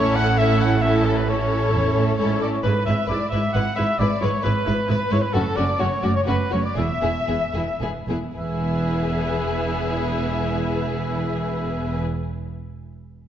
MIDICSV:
0, 0, Header, 1, 8, 480
1, 0, Start_track
1, 0, Tempo, 451467
1, 1359, Time_signature, 3, 2, 24, 8
1, 5680, Tempo, 474308
1, 7120, Tempo, 533808
1, 8560, Tempo, 564972
1, 12734, End_track
2, 0, Start_track
2, 0, Title_t, "Cor anglais"
2, 0, Program_c, 0, 69
2, 0, Note_on_c, 0, 73, 96
2, 167, Note_on_c, 0, 78, 93
2, 183, Note_off_c, 0, 73, 0
2, 407, Note_on_c, 0, 76, 87
2, 423, Note_off_c, 0, 78, 0
2, 642, Note_off_c, 0, 76, 0
2, 646, Note_on_c, 0, 78, 93
2, 870, Note_on_c, 0, 76, 86
2, 886, Note_off_c, 0, 78, 0
2, 1116, Note_on_c, 0, 69, 71
2, 1132, Note_off_c, 0, 76, 0
2, 1240, Note_on_c, 0, 71, 56
2, 1256, Note_off_c, 0, 69, 0
2, 1360, Note_off_c, 0, 71, 0
2, 1378, Note_on_c, 0, 73, 76
2, 2311, Note_off_c, 0, 73, 0
2, 2318, Note_on_c, 0, 73, 65
2, 2556, Note_off_c, 0, 73, 0
2, 2568, Note_on_c, 0, 74, 64
2, 2622, Note_off_c, 0, 74, 0
2, 2675, Note_on_c, 0, 73, 52
2, 2787, Note_off_c, 0, 73, 0
2, 2793, Note_on_c, 0, 71, 74
2, 3027, Note_off_c, 0, 71, 0
2, 3034, Note_on_c, 0, 76, 64
2, 3275, Note_off_c, 0, 76, 0
2, 3280, Note_on_c, 0, 74, 71
2, 3494, Note_off_c, 0, 74, 0
2, 3500, Note_on_c, 0, 76, 66
2, 3741, Note_off_c, 0, 76, 0
2, 3747, Note_on_c, 0, 78, 72
2, 3988, Note_off_c, 0, 78, 0
2, 3995, Note_on_c, 0, 76, 75
2, 4239, Note_on_c, 0, 74, 68
2, 4255, Note_off_c, 0, 76, 0
2, 4467, Note_off_c, 0, 74, 0
2, 4473, Note_on_c, 0, 73, 68
2, 4716, Note_on_c, 0, 71, 73
2, 4731, Note_off_c, 0, 73, 0
2, 5195, Note_off_c, 0, 71, 0
2, 5213, Note_on_c, 0, 71, 74
2, 5444, Note_on_c, 0, 73, 68
2, 5460, Note_off_c, 0, 71, 0
2, 5557, Note_on_c, 0, 71, 63
2, 5573, Note_off_c, 0, 73, 0
2, 5669, Note_on_c, 0, 69, 76
2, 5684, Note_off_c, 0, 71, 0
2, 5907, Note_on_c, 0, 74, 76
2, 5922, Note_off_c, 0, 69, 0
2, 6151, Note_on_c, 0, 73, 69
2, 6166, Note_off_c, 0, 74, 0
2, 6393, Note_on_c, 0, 74, 66
2, 6408, Note_off_c, 0, 73, 0
2, 6503, Note_off_c, 0, 74, 0
2, 6509, Note_on_c, 0, 73, 63
2, 6562, Note_off_c, 0, 73, 0
2, 6628, Note_on_c, 0, 71, 67
2, 6881, Note_on_c, 0, 73, 64
2, 6897, Note_off_c, 0, 71, 0
2, 6999, Note_off_c, 0, 73, 0
2, 7007, Note_on_c, 0, 74, 49
2, 7123, Note_off_c, 0, 74, 0
2, 7130, Note_on_c, 0, 76, 65
2, 8045, Note_off_c, 0, 76, 0
2, 8568, Note_on_c, 0, 76, 53
2, 11664, Note_off_c, 0, 76, 0
2, 12734, End_track
3, 0, Start_track
3, 0, Title_t, "Violin section"
3, 0, Program_c, 1, 48
3, 0, Note_on_c, 1, 73, 87
3, 152, Note_on_c, 1, 78, 84
3, 156, Note_off_c, 1, 73, 0
3, 390, Note_off_c, 1, 78, 0
3, 391, Note_on_c, 1, 76, 68
3, 629, Note_off_c, 1, 76, 0
3, 640, Note_on_c, 1, 78, 75
3, 725, Note_off_c, 1, 78, 0
3, 864, Note_on_c, 1, 76, 73
3, 950, Note_off_c, 1, 76, 0
3, 1138, Note_on_c, 1, 69, 59
3, 1182, Note_off_c, 1, 69, 0
3, 1249, Note_on_c, 1, 71, 55
3, 1339, Note_on_c, 1, 73, 66
3, 1362, Note_off_c, 1, 71, 0
3, 2292, Note_off_c, 1, 73, 0
3, 2325, Note_on_c, 1, 73, 52
3, 2559, Note_off_c, 1, 73, 0
3, 2576, Note_on_c, 1, 74, 49
3, 2622, Note_off_c, 1, 74, 0
3, 2684, Note_on_c, 1, 73, 47
3, 2732, Note_off_c, 1, 73, 0
3, 2803, Note_on_c, 1, 71, 58
3, 3040, Note_off_c, 1, 71, 0
3, 3047, Note_on_c, 1, 76, 60
3, 3287, Note_off_c, 1, 76, 0
3, 3290, Note_on_c, 1, 74, 61
3, 3522, Note_on_c, 1, 76, 55
3, 3523, Note_off_c, 1, 74, 0
3, 3747, Note_on_c, 1, 78, 59
3, 3758, Note_off_c, 1, 76, 0
3, 3975, Note_on_c, 1, 76, 59
3, 3995, Note_off_c, 1, 78, 0
3, 4229, Note_off_c, 1, 76, 0
3, 4246, Note_on_c, 1, 74, 61
3, 4465, Note_on_c, 1, 73, 57
3, 4480, Note_off_c, 1, 74, 0
3, 4713, Note_off_c, 1, 73, 0
3, 4713, Note_on_c, 1, 71, 51
3, 5178, Note_off_c, 1, 71, 0
3, 5191, Note_on_c, 1, 71, 58
3, 5429, Note_off_c, 1, 71, 0
3, 5439, Note_on_c, 1, 73, 60
3, 5545, Note_on_c, 1, 71, 54
3, 5556, Note_off_c, 1, 73, 0
3, 5672, Note_off_c, 1, 71, 0
3, 5674, Note_on_c, 1, 69, 68
3, 5908, Note_off_c, 1, 69, 0
3, 5910, Note_on_c, 1, 74, 60
3, 6134, Note_on_c, 1, 73, 54
3, 6144, Note_off_c, 1, 74, 0
3, 6362, Note_on_c, 1, 74, 56
3, 6376, Note_off_c, 1, 73, 0
3, 6492, Note_off_c, 1, 74, 0
3, 6494, Note_on_c, 1, 73, 52
3, 6616, Note_off_c, 1, 73, 0
3, 6616, Note_on_c, 1, 71, 55
3, 6697, Note_off_c, 1, 71, 0
3, 6864, Note_on_c, 1, 73, 52
3, 6988, Note_off_c, 1, 73, 0
3, 6993, Note_on_c, 1, 74, 46
3, 7116, Note_off_c, 1, 74, 0
3, 7131, Note_on_c, 1, 76, 53
3, 8065, Note_off_c, 1, 76, 0
3, 8554, Note_on_c, 1, 71, 44
3, 11651, Note_off_c, 1, 71, 0
3, 12734, End_track
4, 0, Start_track
4, 0, Title_t, "Violin section"
4, 0, Program_c, 2, 48
4, 0, Note_on_c, 2, 69, 66
4, 380, Note_off_c, 2, 69, 0
4, 401, Note_on_c, 2, 69, 67
4, 869, Note_off_c, 2, 69, 0
4, 905, Note_on_c, 2, 69, 63
4, 1353, Note_off_c, 2, 69, 0
4, 1365, Note_on_c, 2, 69, 51
4, 2305, Note_off_c, 2, 69, 0
4, 2319, Note_on_c, 2, 69, 48
4, 2584, Note_off_c, 2, 69, 0
4, 2795, Note_on_c, 2, 71, 46
4, 2880, Note_off_c, 2, 71, 0
4, 3043, Note_on_c, 2, 71, 45
4, 3128, Note_off_c, 2, 71, 0
4, 3264, Note_on_c, 2, 71, 43
4, 3350, Note_off_c, 2, 71, 0
4, 3528, Note_on_c, 2, 71, 43
4, 3613, Note_off_c, 2, 71, 0
4, 3769, Note_on_c, 2, 71, 45
4, 3854, Note_off_c, 2, 71, 0
4, 4000, Note_on_c, 2, 71, 46
4, 4085, Note_off_c, 2, 71, 0
4, 4255, Note_on_c, 2, 71, 46
4, 4340, Note_off_c, 2, 71, 0
4, 4495, Note_on_c, 2, 71, 48
4, 4580, Note_off_c, 2, 71, 0
4, 4708, Note_on_c, 2, 71, 44
4, 4794, Note_off_c, 2, 71, 0
4, 4959, Note_on_c, 2, 71, 46
4, 5044, Note_off_c, 2, 71, 0
4, 5204, Note_on_c, 2, 71, 47
4, 5289, Note_off_c, 2, 71, 0
4, 5436, Note_on_c, 2, 71, 48
4, 5521, Note_off_c, 2, 71, 0
4, 5679, Note_on_c, 2, 66, 50
4, 5760, Note_off_c, 2, 66, 0
4, 5911, Note_on_c, 2, 66, 51
4, 5992, Note_off_c, 2, 66, 0
4, 6138, Note_on_c, 2, 66, 46
4, 6219, Note_off_c, 2, 66, 0
4, 6370, Note_on_c, 2, 66, 46
4, 6451, Note_off_c, 2, 66, 0
4, 6612, Note_on_c, 2, 66, 48
4, 6693, Note_off_c, 2, 66, 0
4, 6857, Note_on_c, 2, 66, 42
4, 6938, Note_off_c, 2, 66, 0
4, 7115, Note_on_c, 2, 68, 40
4, 7188, Note_off_c, 2, 68, 0
4, 7343, Note_on_c, 2, 68, 36
4, 7415, Note_off_c, 2, 68, 0
4, 7575, Note_on_c, 2, 68, 35
4, 7647, Note_off_c, 2, 68, 0
4, 7809, Note_on_c, 2, 68, 36
4, 7881, Note_off_c, 2, 68, 0
4, 8061, Note_on_c, 2, 68, 38
4, 8133, Note_off_c, 2, 68, 0
4, 8309, Note_on_c, 2, 68, 34
4, 8381, Note_off_c, 2, 68, 0
4, 8550, Note_on_c, 2, 68, 43
4, 11648, Note_off_c, 2, 68, 0
4, 12734, End_track
5, 0, Start_track
5, 0, Title_t, "Viola section"
5, 0, Program_c, 3, 48
5, 0, Note_on_c, 3, 61, 71
5, 0, Note_on_c, 3, 64, 70
5, 374, Note_off_c, 3, 61, 0
5, 375, Note_off_c, 3, 64, 0
5, 415, Note_on_c, 3, 64, 70
5, 420, Note_on_c, 3, 61, 68
5, 869, Note_off_c, 3, 61, 0
5, 877, Note_off_c, 3, 64, 0
5, 882, Note_on_c, 3, 61, 55
5, 889, Note_on_c, 3, 64, 62
5, 1351, Note_off_c, 3, 61, 0
5, 1351, Note_off_c, 3, 64, 0
5, 1364, Note_on_c, 3, 64, 54
5, 1365, Note_on_c, 3, 61, 50
5, 2304, Note_off_c, 3, 64, 0
5, 2305, Note_off_c, 3, 61, 0
5, 2325, Note_on_c, 3, 61, 47
5, 2330, Note_on_c, 3, 64, 46
5, 2586, Note_off_c, 3, 61, 0
5, 2589, Note_off_c, 3, 64, 0
5, 2807, Note_on_c, 3, 64, 47
5, 2812, Note_on_c, 3, 56, 46
5, 2892, Note_off_c, 3, 64, 0
5, 2897, Note_off_c, 3, 56, 0
5, 3056, Note_on_c, 3, 56, 43
5, 3063, Note_on_c, 3, 64, 42
5, 3141, Note_off_c, 3, 56, 0
5, 3148, Note_off_c, 3, 64, 0
5, 3296, Note_on_c, 3, 64, 47
5, 3300, Note_on_c, 3, 56, 48
5, 3381, Note_off_c, 3, 64, 0
5, 3385, Note_off_c, 3, 56, 0
5, 3535, Note_on_c, 3, 56, 44
5, 3549, Note_on_c, 3, 64, 41
5, 3620, Note_off_c, 3, 56, 0
5, 3634, Note_off_c, 3, 64, 0
5, 3780, Note_on_c, 3, 64, 44
5, 3783, Note_on_c, 3, 56, 41
5, 3865, Note_off_c, 3, 64, 0
5, 3868, Note_off_c, 3, 56, 0
5, 4010, Note_on_c, 3, 64, 43
5, 4011, Note_on_c, 3, 56, 41
5, 4095, Note_off_c, 3, 64, 0
5, 4096, Note_off_c, 3, 56, 0
5, 4245, Note_on_c, 3, 56, 48
5, 4248, Note_on_c, 3, 64, 47
5, 4330, Note_off_c, 3, 56, 0
5, 4333, Note_off_c, 3, 64, 0
5, 4470, Note_on_c, 3, 64, 44
5, 4472, Note_on_c, 3, 56, 43
5, 4555, Note_off_c, 3, 64, 0
5, 4557, Note_off_c, 3, 56, 0
5, 4707, Note_on_c, 3, 56, 45
5, 4710, Note_on_c, 3, 64, 48
5, 4792, Note_off_c, 3, 56, 0
5, 4795, Note_off_c, 3, 64, 0
5, 4944, Note_on_c, 3, 64, 46
5, 4948, Note_on_c, 3, 56, 43
5, 5029, Note_off_c, 3, 64, 0
5, 5033, Note_off_c, 3, 56, 0
5, 5185, Note_on_c, 3, 64, 44
5, 5189, Note_on_c, 3, 56, 44
5, 5270, Note_off_c, 3, 64, 0
5, 5274, Note_off_c, 3, 56, 0
5, 5438, Note_on_c, 3, 64, 47
5, 5446, Note_on_c, 3, 56, 43
5, 5523, Note_off_c, 3, 64, 0
5, 5531, Note_off_c, 3, 56, 0
5, 5682, Note_on_c, 3, 57, 51
5, 5689, Note_on_c, 3, 61, 51
5, 5763, Note_off_c, 3, 57, 0
5, 5770, Note_off_c, 3, 61, 0
5, 5917, Note_on_c, 3, 57, 48
5, 5917, Note_on_c, 3, 61, 50
5, 5998, Note_off_c, 3, 57, 0
5, 5998, Note_off_c, 3, 61, 0
5, 6141, Note_on_c, 3, 61, 46
5, 6146, Note_on_c, 3, 57, 51
5, 6221, Note_off_c, 3, 61, 0
5, 6227, Note_off_c, 3, 57, 0
5, 6374, Note_on_c, 3, 61, 45
5, 6380, Note_on_c, 3, 57, 43
5, 6455, Note_off_c, 3, 61, 0
5, 6461, Note_off_c, 3, 57, 0
5, 6621, Note_on_c, 3, 61, 45
5, 6632, Note_on_c, 3, 57, 46
5, 6702, Note_off_c, 3, 61, 0
5, 6713, Note_off_c, 3, 57, 0
5, 6873, Note_on_c, 3, 57, 40
5, 6875, Note_on_c, 3, 61, 42
5, 6954, Note_off_c, 3, 57, 0
5, 6955, Note_off_c, 3, 61, 0
5, 7130, Note_on_c, 3, 64, 38
5, 7131, Note_on_c, 3, 59, 43
5, 7202, Note_off_c, 3, 64, 0
5, 7203, Note_off_c, 3, 59, 0
5, 7346, Note_on_c, 3, 59, 38
5, 7350, Note_on_c, 3, 64, 39
5, 7418, Note_off_c, 3, 59, 0
5, 7422, Note_off_c, 3, 64, 0
5, 7587, Note_on_c, 3, 59, 36
5, 7592, Note_on_c, 3, 64, 38
5, 7659, Note_off_c, 3, 59, 0
5, 7664, Note_off_c, 3, 64, 0
5, 7833, Note_on_c, 3, 64, 36
5, 7836, Note_on_c, 3, 59, 33
5, 7905, Note_off_c, 3, 64, 0
5, 7908, Note_off_c, 3, 59, 0
5, 8072, Note_on_c, 3, 59, 35
5, 8073, Note_on_c, 3, 64, 34
5, 8144, Note_off_c, 3, 59, 0
5, 8145, Note_off_c, 3, 64, 0
5, 8312, Note_on_c, 3, 64, 35
5, 8314, Note_on_c, 3, 59, 33
5, 8384, Note_off_c, 3, 64, 0
5, 8386, Note_off_c, 3, 59, 0
5, 8569, Note_on_c, 3, 59, 48
5, 8574, Note_on_c, 3, 64, 43
5, 11666, Note_off_c, 3, 59, 0
5, 11671, Note_off_c, 3, 64, 0
5, 12734, End_track
6, 0, Start_track
6, 0, Title_t, "Cello section"
6, 0, Program_c, 4, 48
6, 0, Note_on_c, 4, 45, 78
6, 1750, Note_off_c, 4, 45, 0
6, 1845, Note_on_c, 4, 40, 53
6, 2066, Note_off_c, 4, 40, 0
6, 2080, Note_on_c, 4, 45, 57
6, 2316, Note_off_c, 4, 45, 0
6, 2329, Note_on_c, 4, 44, 56
6, 2562, Note_off_c, 4, 44, 0
6, 2575, Note_on_c, 4, 45, 51
6, 2810, Note_off_c, 4, 45, 0
6, 2816, Note_on_c, 4, 44, 62
6, 2901, Note_off_c, 4, 44, 0
6, 3058, Note_on_c, 4, 44, 48
6, 3143, Note_off_c, 4, 44, 0
6, 3300, Note_on_c, 4, 44, 46
6, 3385, Note_off_c, 4, 44, 0
6, 3540, Note_on_c, 4, 44, 45
6, 3625, Note_off_c, 4, 44, 0
6, 3778, Note_on_c, 4, 44, 50
6, 3863, Note_off_c, 4, 44, 0
6, 4025, Note_on_c, 4, 44, 48
6, 4110, Note_off_c, 4, 44, 0
6, 4250, Note_on_c, 4, 44, 54
6, 4335, Note_off_c, 4, 44, 0
6, 4504, Note_on_c, 4, 44, 50
6, 4590, Note_off_c, 4, 44, 0
6, 4728, Note_on_c, 4, 44, 50
6, 4813, Note_off_c, 4, 44, 0
6, 4963, Note_on_c, 4, 44, 48
6, 5048, Note_off_c, 4, 44, 0
6, 5206, Note_on_c, 4, 44, 52
6, 5291, Note_off_c, 4, 44, 0
6, 5442, Note_on_c, 4, 44, 55
6, 5527, Note_off_c, 4, 44, 0
6, 5690, Note_on_c, 4, 42, 61
6, 5771, Note_off_c, 4, 42, 0
6, 5924, Note_on_c, 4, 42, 49
6, 6005, Note_off_c, 4, 42, 0
6, 6162, Note_on_c, 4, 42, 48
6, 6243, Note_off_c, 4, 42, 0
6, 6399, Note_on_c, 4, 42, 55
6, 6480, Note_off_c, 4, 42, 0
6, 6636, Note_on_c, 4, 42, 48
6, 6717, Note_off_c, 4, 42, 0
6, 6889, Note_on_c, 4, 42, 48
6, 6970, Note_off_c, 4, 42, 0
6, 7130, Note_on_c, 4, 40, 52
6, 7201, Note_off_c, 4, 40, 0
6, 7360, Note_on_c, 4, 40, 42
6, 7432, Note_off_c, 4, 40, 0
6, 7588, Note_on_c, 4, 40, 38
6, 7660, Note_off_c, 4, 40, 0
6, 7818, Note_on_c, 4, 40, 38
6, 7890, Note_off_c, 4, 40, 0
6, 8051, Note_on_c, 4, 40, 36
6, 8123, Note_off_c, 4, 40, 0
6, 8305, Note_on_c, 4, 40, 40
6, 8376, Note_off_c, 4, 40, 0
6, 8557, Note_on_c, 4, 40, 49
6, 11654, Note_off_c, 4, 40, 0
6, 12734, End_track
7, 0, Start_track
7, 0, Title_t, "Timpani"
7, 0, Program_c, 5, 47
7, 8566, Note_on_c, 5, 40, 35
7, 11662, Note_off_c, 5, 40, 0
7, 12734, End_track
8, 0, Start_track
8, 0, Title_t, "Double bass section"
8, 0, Program_c, 6, 48
8, 0, Note_on_c, 6, 33, 76
8, 2549, Note_off_c, 6, 33, 0
8, 2812, Note_on_c, 6, 32, 53
8, 2898, Note_off_c, 6, 32, 0
8, 3054, Note_on_c, 6, 32, 52
8, 3139, Note_off_c, 6, 32, 0
8, 3291, Note_on_c, 6, 32, 56
8, 3377, Note_off_c, 6, 32, 0
8, 3530, Note_on_c, 6, 32, 47
8, 3616, Note_off_c, 6, 32, 0
8, 3771, Note_on_c, 6, 32, 48
8, 3856, Note_off_c, 6, 32, 0
8, 4011, Note_on_c, 6, 32, 48
8, 4096, Note_off_c, 6, 32, 0
8, 4254, Note_on_c, 6, 32, 57
8, 4339, Note_off_c, 6, 32, 0
8, 4493, Note_on_c, 6, 32, 56
8, 4578, Note_off_c, 6, 32, 0
8, 4730, Note_on_c, 6, 32, 58
8, 4816, Note_off_c, 6, 32, 0
8, 4972, Note_on_c, 6, 32, 47
8, 5057, Note_off_c, 6, 32, 0
8, 5205, Note_on_c, 6, 32, 56
8, 5290, Note_off_c, 6, 32, 0
8, 5453, Note_on_c, 6, 32, 51
8, 5538, Note_off_c, 6, 32, 0
8, 5693, Note_on_c, 6, 30, 60
8, 5774, Note_off_c, 6, 30, 0
8, 5920, Note_on_c, 6, 30, 59
8, 6001, Note_off_c, 6, 30, 0
8, 6152, Note_on_c, 6, 30, 54
8, 6233, Note_off_c, 6, 30, 0
8, 6389, Note_on_c, 6, 30, 50
8, 6470, Note_off_c, 6, 30, 0
8, 6628, Note_on_c, 6, 30, 54
8, 6709, Note_off_c, 6, 30, 0
8, 6878, Note_on_c, 6, 30, 44
8, 6959, Note_off_c, 6, 30, 0
8, 7125, Note_on_c, 6, 28, 47
8, 7197, Note_off_c, 6, 28, 0
8, 7358, Note_on_c, 6, 28, 45
8, 7430, Note_off_c, 6, 28, 0
8, 7587, Note_on_c, 6, 28, 43
8, 7659, Note_off_c, 6, 28, 0
8, 7824, Note_on_c, 6, 28, 37
8, 7896, Note_off_c, 6, 28, 0
8, 8060, Note_on_c, 6, 28, 39
8, 8132, Note_off_c, 6, 28, 0
8, 8301, Note_on_c, 6, 28, 36
8, 8373, Note_off_c, 6, 28, 0
8, 8553, Note_on_c, 6, 28, 47
8, 11650, Note_off_c, 6, 28, 0
8, 12734, End_track
0, 0, End_of_file